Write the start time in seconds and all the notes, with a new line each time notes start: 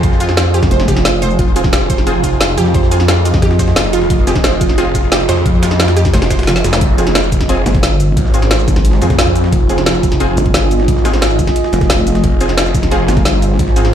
Already playing: F2 F4 G#4 C5
0.03 C5, kick, closed hi-hat
0.12 snare
0.20 F4, closed hi-hat, shaker
0.29 snare
0.37 F4, snare, closed hi-hat
0.46 snare
0.54 G4, closed hi-hat, shaker
0.63 kick, snare, shaker
0.71 F1 C5, closed hi-hat
0.80 snare
0.88 F1 G4, kick, snare, closed hi-hat, shaker
0.96 snare
1.05 snare, closed hi-hat
1.22 C5, closed hi-hat, shaker
1.31 shaker
1.39 F1 F4 D#5, kick, closed hi-hat
1.56 C4 F4 G#4, closed hi-hat, shaker
1.64 kick, snare
1.73 F1 G4, snare, closed hi-hat
1.81 snare
1.90 C5, kick, closed hi-hat, shaker
1.98 snare
2.07 C4 F4 G#4, closed hi-hat
2.24 F4, kick, closed hi-hat, shaker
2.41 F4, snare, closed hi-hat
2.49 closed hi-hat
2.57 F2 G4, closed hi-hat, shaker
2.66 snare
2.74 C5, kick, closed hi-hat
2.83 snare
2.91 C4 F4 G#4, closed hi-hat, shaker
3.00 snare
3.08 F4, snare, closed hi-hat
3.17 snare
3.25 F4, closed hi-hat, shaker
3.34 kick, snare
3.42 F2 G4, closed hi-hat
3.51 snare
3.59 C5, kick, snare, closed hi-hat, shaker
3.68 snare
3.76 F1 F4, snare, closed hi-hat, open hi-hat
3.85 closed hi-hat
3.93 F4, closed hi-hat, shaker
4.02 snare
4.10 F1 F4, kick, closed hi-hat
4.27 C4 F4 G4 G#4, closed hi-hat, shaker
4.36 kick, snare
4.44 F1 C5, snare, closed hi-hat
4.52 snare
4.61 F4, kick, closed hi-hat, shaker
4.69 snare
4.78 C4 F4 G#4, closed hi-hat
4.95 F4, kick, closed hi-hat, shaker
5.12 G4, snare, closed hi-hat
5.20 closed hi-hat
5.29 F2 C5, snare, closed hi-hat, shaker
5.37 snare
5.46 F4, kick, closed hi-hat
5.63 F4, snare, closed hi-hat, shaker
5.71 snare
5.80 F4, snare, closed hi-hat
5.88 snare, closed hi-hat
5.97 G4, snare, closed hi-hat, shaker
6.05 kick, snare, closed hi-hat, shaker
6.14 F1 C5, snare, closed hi-hat
6.22 snare, closed hi-hat
6.30 C5, kick, snare, closed hi-hat, shaker
6.39 snare, closed hi-hat
6.43 snare, closed hi-hat
6.47 F4, snare, closed hi-hat
6.56 snare, shaker
6.64 F1 G#4, snare, closed hi-hat, shaker
6.73 snare, zap, shaker
6.81 F1 F4 G#4 C5, kick, closed hi-hat
6.98 C4 F4 G#4, closed hi-hat, shaker
7.07 snare, closed hi-hat
7.15 snare, closed hi-hat
7.24 snare, shaker
7.32 kick, closed hi-hat, shaker
7.41 kick, snare, closed hi-hat
7.49 C4 F4 G#4, closed hi-hat
7.66 G1, snare, closed hi-hat, shaker
7.75 kick, snare, closed hi-hat
7.83 snare, closed hi-hat
8.00 closed hi-hat, shaker
8.17 G#1, kick, closed hi-hat
8.25 snare
8.34 C4 F4 G#4, closed hi-hat, shaker
8.42 snare, closed hi-hat
8.51 snare, closed hi-hat
8.59 snare, shaker
8.68 G#1, kick, closed hi-hat, shaker
8.76 kick, snare, closed hi-hat
8.85 closed hi-hat
8.93 snare
9.02 F2 C4 F4 G#4, snare, closed hi-hat, shaker
9.10 kick, snare, closed hi-hat
9.19 C4 F4 G#4, snare, closed hi-hat, open hi-hat
9.27 kick, closed hi-hat
9.36 closed hi-hat, shaker
9.44 snare
9.52 F1 D#5, kick, closed hi-hat
9.69 C4 F4 G#4, closed hi-hat, shaker
9.78 snare, closed hi-hat
9.86 snare, closed hi-hat
9.95 snare, shaker
10.03 kick, closed hi-hat, shaker
10.12 kick, snare, closed hi-hat
10.20 C4 F4 G#4, closed hi-hat
10.37 G1, closed hi-hat, shaker
10.46 kick, closed hi-hat
10.54 snare, closed hi-hat
10.63 closed hi-hat
10.71 closed hi-hat, shaker
10.80 snare
10.88 G#1, kick, closed hi-hat
10.97 snare
11.05 C4 F4 G#4, snare, closed hi-hat, shaker
11.13 snare, closed hi-hat
11.22 snare, closed hi-hat
11.30 snare, shaker
11.39 kick, closed hi-hat, shaker
11.47 kick, snare, closed hi-hat
11.56 closed hi-hat
11.64 snare
11.73 F1, snare, closed hi-hat, shaker
11.81 kick, snare, closed hi-hat
11.90 snare, closed hi-hat, open hi-hat
11.98 kick, closed hi-hat
12.07 closed hi-hat, shaker
12.15 snare, closed hi-hat
12.24 F1 C5, kick, closed hi-hat
12.41 C4 F4 G#4, closed hi-hat, shaker
12.49 snare, closed hi-hat
12.58 snare, closed hi-hat
12.66 snare, shaker
12.74 kick, closed hi-hat, shaker
12.83 kick, snare, closed hi-hat
12.91 C4 F4 G#4, closed hi-hat
13.08 G1, snare, closed hi-hat, shaker
13.17 kick, snare, closed hi-hat
13.25 snare, closed hi-hat
13.42 closed hi-hat, shaker
13.59 G#1, kick, closed hi-hat
13.68 snare
13.76 C4 F4 G#4, closed hi-hat, shaker
13.85 snare, closed hi-hat